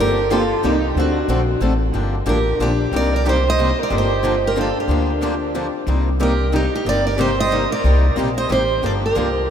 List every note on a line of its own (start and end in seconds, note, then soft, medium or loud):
0.00 0.51 G1 loud
0.00 0.19 D3 medium
0.00 0.19 F3 medium
0.00 0.19 A#3 medium
0.00 0.19 D4 medium
0.00 0.19 G4 medium
0.00 0.30 G4 medium
0.00 0.32 A#4 medium
0.30 0.42 D3 medium
0.30 0.42 F3 medium
0.30 0.42 A#3 medium
0.30 0.42 D4 medium
0.30 0.63 F4 medium
0.30 0.42 G4 loud
0.30 0.63 A4 medium
0.63 0.90 C2 medium
0.63 0.75 C3 medium
0.63 0.75 G3 medium
0.63 0.75 A#3 medium
0.63 0.95 D#4 medium
0.63 0.75 D#4 medium
0.63 0.95 G4 medium
0.63 0.76 G4 medium
0.95 1.22 D2 loud
0.95 1.17 D3 medium
0.95 1.17 A3 medium
0.95 1.17 C4 medium
0.95 1.58 D4 medium
0.95 1.17 F#4 medium
0.95 1.18 A4 medium
1.00 1.60 F#4 medium
1.28 1.56 A#1 medium
1.28 1.40 D3 medium
1.28 1.40 A3 medium
1.28 1.40 C4 medium
1.28 1.41 F#4 medium
1.28 1.40 A4 loud
1.61 1.89 A1 medium
1.61 1.72 D3 medium
1.61 1.73 A3 medium
1.61 1.73 C4 medium
1.61 1.73 F#4 medium
1.61 1.73 A4 medium
1.93 2.20 G1 medium
1.93 2.14 D3 medium
1.93 2.14 F3 medium
1.93 2.14 A#3 medium
1.93 2.15 D4 medium
1.93 2.15 G4 medium
2.26 2.54 A1 medium
2.26 2.37 D3 medium
2.26 2.38 F3 medium
2.26 2.38 A#3 medium
2.26 2.38 D4 medium
2.26 2.38 G4 medium
2.26 2.58 G4 medium
2.26 2.62 A#4 medium
2.58 2.88 A#1 medium
2.58 2.71 D3 medium
2.58 2.71 F3 medium
2.58 2.71 A#3 medium
2.58 2.90 D4 medium
2.58 2.71 D4 medium
2.58 2.71 G4 medium
2.62 2.95 G4 medium
2.92 3.71 C2 medium
2.92 3.12 C3 medium
2.92 3.13 G3 medium
2.92 3.13 A#3 medium
2.92 3.13 D#4 medium
2.92 3.13 G4 medium
2.92 3.11 A#4 medium
2.96 3.15 D5 loud
3.13 3.25 A#4 medium
3.13 3.27 D5 medium
3.26 3.37 C3 medium
3.26 3.36 G3 medium
3.26 3.37 A#3 medium
3.26 3.37 D#4 medium
3.26 3.44 G4 medium
3.26 3.37 G4 medium
3.26 3.47 C5 medium
3.46 3.76 C5 medium
3.46 3.81 D#5 loud
3.59 3.69 C3 medium
3.59 3.70 G3 medium
3.59 3.70 A#3 medium
3.59 3.70 D#4 medium
3.59 3.70 G4 medium
3.81 3.92 A#4 medium
3.81 3.94 D5 medium
3.91 4.70 G1 loud
3.91 4.11 D3 medium
3.91 4.11 F3 medium
3.91 4.12 A#3 medium
3.91 4.12 D4 medium
3.91 4.12 G4 medium
3.91 4.41 G4 medium
3.98 4.48 C5 medium
4.23 4.34 D3 medium
4.23 4.34 F3 medium
4.23 4.34 A#3 medium
4.23 4.35 D4 medium
4.23 4.35 G4 medium
4.46 4.57 G4 medium
4.46 4.58 A#4 medium
4.56 4.67 D3 medium
4.56 4.67 F3 medium
4.56 4.67 A#3 medium
4.56 4.67 D4 medium
4.56 4.75 F4 medium
4.56 4.68 G4 medium
4.61 4.79 A4 medium
4.78 5.72 D4 medium
4.78 5.73 G4 medium
4.88 5.67 D2 medium
4.88 5.09 D3 medium
4.88 5.09 F3 medium
4.88 5.09 A#3 medium
4.88 5.09 D4 medium
4.88 5.09 G4 medium
5.21 5.32 D3 medium
5.21 5.33 F3 medium
5.21 5.33 A#3 medium
5.21 5.33 D4 medium
5.21 5.33 G4 medium
5.55 5.66 D3 medium
5.55 5.66 F3 medium
5.55 5.66 A#3 medium
5.55 5.66 D4 medium
5.55 5.66 G4 medium
5.87 6.66 C2 loud
5.87 6.08 C3 medium
5.87 6.08 G3 medium
5.87 6.08 A#3 medium
5.87 6.08 D#4 medium
5.87 6.08 G4 medium
6.20 6.31 C3 medium
6.20 6.32 G3 medium
6.20 6.32 A#3 medium
6.20 6.32 D#4 medium
6.20 6.51 G4 medium
6.20 6.32 G4 medium
6.20 6.53 A#4 medium
6.52 6.64 C3 medium
6.52 6.64 G3 medium
6.52 6.64 A#3 medium
6.52 6.72 D#4 medium
6.52 6.64 D#4 medium
6.52 6.64 G4 medium
6.52 6.73 G4 medium
6.73 6.86 D#4 medium
6.73 6.87 G4 medium
6.85 7.65 G1 medium
6.85 7.06 C3 medium
6.85 7.07 G3 medium
6.85 7.07 A#3 medium
6.85 7.07 D#4 medium
6.85 7.07 G4 medium
6.85 7.05 A#4 medium
6.85 7.06 D5 loud
7.06 7.18 A#4 medium
7.06 7.19 D5 medium
7.18 7.30 C3 medium
7.18 7.30 G3 medium
7.18 7.30 A#3 medium
7.18 7.30 D#4 loud
7.18 7.30 G4 medium
7.18 7.37 G4 medium
7.18 7.38 C5 medium
7.38 7.69 C5 loud
7.38 7.70 D#5 loud
7.52 7.63 C3 medium
7.52 7.63 G3 medium
7.52 7.63 A#3 medium
7.52 7.63 D#4 medium
7.52 7.63 G4 medium
7.71 8.15 A#4 medium
7.71 8.15 D5 loud
7.84 8.11 C2 loud
7.84 8.05 C3 medium
7.84 8.05 G3 medium
7.84 8.05 A#3 medium
7.84 8.05 D#4 medium
7.84 8.05 G4 medium
8.16 8.45 A#1 medium
8.16 8.28 C3 medium
8.16 8.28 G3 medium
8.16 8.28 A#3 medium
8.16 8.28 D#4 medium
8.16 8.28 G4 medium
8.37 8.50 C5 medium
8.37 8.50 D#5 loud
8.50 8.78 A1 medium
8.50 8.61 C3 medium
8.50 8.61 G3 medium
8.50 8.61 A#3 medium
8.50 8.61 D#4 medium
8.50 8.81 G4 medium
8.50 8.62 G4 medium
8.50 8.82 C5 loud
8.82 9.10 G1 medium
8.82 9.03 D3 medium
8.82 9.03 F3 medium
8.82 9.03 A#3 medium
8.82 9.04 D4 medium
8.82 9.04 G4 medium
8.82 8.92 A#4 medium
8.82 8.91 D5 loud
9.05 9.50 G4 medium
9.05 9.50 A#4 medium
9.16 9.45 C2 medium
9.16 9.28 D3 medium
9.16 9.28 F3 medium
9.16 9.28 A#3 medium
9.16 9.28 D4 medium
9.16 9.28 G4 medium